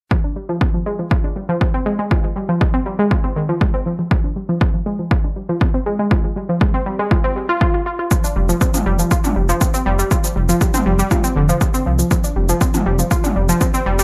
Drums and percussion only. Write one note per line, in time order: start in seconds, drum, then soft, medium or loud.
0.11 kick loud
0.61 kick loud
1.11 kick loud
1.61 kick loud
2.11 kick loud
2.61 kick loud
3.11 kick loud
3.61 kick loud
4.11 kick loud
4.61 kick loud
5.11 kick loud
5.61 kick loud
6.11 kick loud
6.61 kick loud
7.11 kick loud
7.61 kick loud
8.11 kick loud
8.11 shaker medium
8.24 shaker soft
8.49 shaker soft
8.61 kick loud
8.61 shaker soft
8.74 mid tom medium
8.74 shaker soft
8.99 shaker soft
9.11 kick loud
9.11 shaker soft
9.24 mid tom medium
9.24 shaker soft
9.49 shaker soft
9.61 kick loud
9.61 shaker medium
9.74 shaker medium
9.99 shaker soft
10.11 kick loud
10.11 shaker soft
10.24 shaker soft
10.49 shaker soft
10.61 kick loud
10.61 shaker medium
10.74 mid tom medium
10.74 shaker soft
10.99 shaker soft
11.11 kick loud
11.11 mid tom medium
11.11 shaker soft
11.24 shaker medium
11.49 shaker medium
11.61 kick loud
11.61 shaker soft
11.74 shaker medium
11.99 shaker soft
12.11 kick loud
12.11 shaker soft
12.24 shaker medium
12.49 shaker soft
12.61 kick loud
12.61 shaker medium
12.74 mid tom medium
12.74 shaker medium
12.99 shaker soft
13.11 kick loud
13.11 shaker medium
13.24 mid tom medium
13.24 shaker medium
13.49 shaker medium
13.61 kick loud
13.61 shaker soft
13.74 shaker medium
13.99 shaker medium